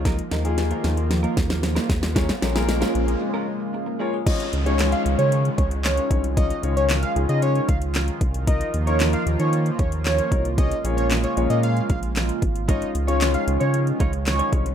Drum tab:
CC |----------------|----------------|x---------------|----------------|
HH |xxxxxxxxxxxxxxxx|xxxxxxxx--------|xxxxxxxxxxxxxxxx|xxxxxxxxxxxxxxxx|
CP |----------------|----------------|----x-------x---|----x-------x---|
SD |o-o-o-o-o-oooooo|oooooo----------|----o-------o---|----o-------o---|
BD |o---------o---o-|o---------------|o---------o---o-|o---------o---o-|

CC |----------------|----------------|----------------|
HH |xxxxxxxxxxxxxxxx|xxxxxxxxxxxxxxxx|xxxxxxxxxxxxxxxx|
CP |----x-------x---|----x-------x---|----x-------x---|
SD |----o-------o---|----o-------o---|----o-------o---|
BD |o---------o---o-|o---------o---o-|o---------o---o-|